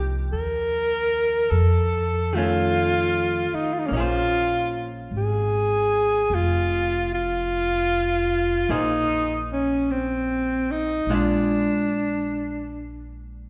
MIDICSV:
0, 0, Header, 1, 5, 480
1, 0, Start_track
1, 0, Key_signature, -5, "minor"
1, 0, Tempo, 1195219
1, 1567, Time_signature, 4, 2, 24, 8
1, 3968, Tempo, 1212121
1, 5399, End_track
2, 0, Start_track
2, 0, Title_t, "Alto saxophone"
2, 0, Program_c, 0, 65
2, 0, Note_on_c, 0, 67, 87
2, 57, Note_off_c, 0, 67, 0
2, 131, Note_on_c, 0, 70, 87
2, 606, Note_on_c, 0, 69, 78
2, 612, Note_off_c, 0, 70, 0
2, 943, Note_on_c, 0, 65, 84
2, 949, Note_off_c, 0, 69, 0
2, 1424, Note_on_c, 0, 63, 69
2, 1430, Note_off_c, 0, 65, 0
2, 1500, Note_on_c, 0, 65, 56
2, 1506, Note_off_c, 0, 63, 0
2, 1525, Note_on_c, 0, 63, 62
2, 1531, Note_off_c, 0, 65, 0
2, 1551, Note_on_c, 0, 61, 59
2, 1557, Note_off_c, 0, 63, 0
2, 1577, Note_on_c, 0, 63, 61
2, 1583, Note_off_c, 0, 61, 0
2, 1585, Note_off_c, 0, 63, 0
2, 1595, Note_on_c, 0, 65, 83
2, 1975, Note_off_c, 0, 65, 0
2, 2077, Note_on_c, 0, 68, 82
2, 2547, Note_on_c, 0, 65, 79
2, 2553, Note_off_c, 0, 68, 0
2, 2855, Note_off_c, 0, 65, 0
2, 2868, Note_on_c, 0, 65, 82
2, 3500, Note_on_c, 0, 63, 79
2, 3506, Note_off_c, 0, 65, 0
2, 3780, Note_off_c, 0, 63, 0
2, 3825, Note_on_c, 0, 61, 61
2, 3981, Note_on_c, 0, 60, 65
2, 3987, Note_off_c, 0, 61, 0
2, 4298, Note_on_c, 0, 63, 64
2, 4304, Note_off_c, 0, 60, 0
2, 4469, Note_on_c, 0, 62, 64
2, 4475, Note_off_c, 0, 63, 0
2, 5264, Note_off_c, 0, 62, 0
2, 5399, End_track
3, 0, Start_track
3, 0, Title_t, "Hollow-body jazz guitar"
3, 0, Program_c, 1, 26
3, 0, Note_on_c, 1, 53, 37
3, 0, Note_on_c, 1, 58, 40
3, 0, Note_on_c, 1, 63, 42
3, 602, Note_off_c, 1, 53, 0
3, 613, Note_off_c, 1, 58, 0
3, 623, Note_off_c, 1, 63, 0
3, 935, Note_on_c, 1, 51, 44
3, 945, Note_on_c, 1, 57, 47
3, 954, Note_on_c, 1, 61, 55
3, 1558, Note_off_c, 1, 51, 0
3, 1560, Note_on_c, 1, 58, 43
3, 1573, Note_off_c, 1, 57, 0
3, 1575, Note_off_c, 1, 61, 0
3, 1579, Note_on_c, 1, 61, 45
3, 1593, Note_on_c, 1, 68, 46
3, 1607, Note_on_c, 1, 72, 50
3, 3480, Note_off_c, 1, 58, 0
3, 3489, Note_off_c, 1, 61, 0
3, 3490, Note_off_c, 1, 68, 0
3, 3491, Note_on_c, 1, 58, 47
3, 3494, Note_off_c, 1, 72, 0
3, 3494, Note_on_c, 1, 68, 49
3, 3499, Note_on_c, 1, 72, 48
3, 4444, Note_off_c, 1, 58, 0
3, 4446, Note_off_c, 1, 68, 0
3, 4448, Note_off_c, 1, 72, 0
3, 4450, Note_on_c, 1, 62, 42
3, 4452, Note_on_c, 1, 56, 41
3, 4455, Note_on_c, 1, 65, 44
3, 5399, Note_off_c, 1, 56, 0
3, 5399, Note_off_c, 1, 62, 0
3, 5399, Note_off_c, 1, 65, 0
3, 5399, End_track
4, 0, Start_track
4, 0, Title_t, "Upright bass"
4, 0, Program_c, 2, 32
4, 0, Note_on_c, 2, 36, 67
4, 113, Note_off_c, 2, 36, 0
4, 131, Note_on_c, 2, 39, 59
4, 593, Note_off_c, 2, 39, 0
4, 607, Note_on_c, 2, 41, 70
4, 1397, Note_off_c, 2, 41, 0
4, 1570, Note_on_c, 2, 34, 73
4, 2031, Note_off_c, 2, 34, 0
4, 2052, Note_on_c, 2, 32, 63
4, 2511, Note_off_c, 2, 32, 0
4, 2530, Note_on_c, 2, 29, 72
4, 3470, Note_off_c, 2, 29, 0
4, 3490, Note_on_c, 2, 34, 67
4, 4428, Note_off_c, 2, 34, 0
4, 4437, Note_on_c, 2, 34, 66
4, 5386, Note_off_c, 2, 34, 0
4, 5399, End_track
5, 0, Start_track
5, 0, Title_t, "Muted upright bass strokes"
5, 1418, Note_on_c, 9, 29, 34
5, 1458, Note_off_c, 9, 29, 0
5, 5399, End_track
0, 0, End_of_file